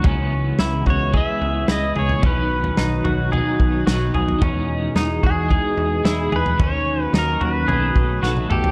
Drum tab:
SD |----o-------o---|----o-------o---|----o-------o---|----o-------o---|
T1 |----------------|----------------|----------------|-------------o--|
T2 |----------------|----------------|----------------|--------------o-|
FT |o-----o-o-----oo|o--o--o-o-----oo|o-----o-o-----oo|o-----o-o------o|
BD |o-----o-o-------|o---------o-----|o-----o-o-------|o---------o-----|